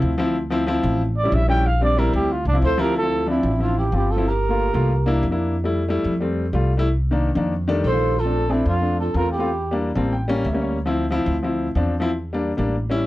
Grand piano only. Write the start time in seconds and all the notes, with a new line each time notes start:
Already playing: F3 C4 E4
0.18 F3 C4 E4
0.50 F3 C4 E4
0.67 F3 C4 E4
1.23 G3 C#4 E4
1.48 G3 C#4 E4
1.81 G3 C4 D4
1.97 G3 C4 E4
2.53 F3 C4 E4
2.77 F3 C4 E4
3.02 F3 C4 E4
3.26 F3 C4 D4
3.59 F3 C4 E4
3.92 F3 C4 F4
4.16 F3 C4 E4
4.49 A3 A#3 F4
4.73 A3 A#3 F4
5.06 A#3 D4 E4
5.31 A#3 D4 E4
5.64 G3 A3 E4
5.88 G3 A3 E4
6.20 G3 A3 C4
6.53 G3 A3 F4
6.77 G3 A3 E4
7.11 D#3 A#3 D4
7.35 D#3 A#3 D4
7.68 D#3 G3 A3 D4
7.92 D#3 G3 A3 F4
8.25 A3 C4 D4
8.49 A3 C4 D4
8.82 A3 C4 D4
9.14 A3 C4 F4
9.38 A3 C4 F4
9.71 G3 A#3 D4
9.95 G3 A#3 C4 A5
10.13 G5
10.28 G3 A#3 C#4
10.46 E5
10.53 G3 A#3 C#4
10.62 C#5
10.86 F3 C4 E4
11.10 F3 C4 E4
11.43 F3 C4 E4
11.75 F3 C4 D4
12.00 F3 C4 E4
12.33 G3 A#3 D4
12.57 G3 A#3 D4
12.90 G3 C#4 E4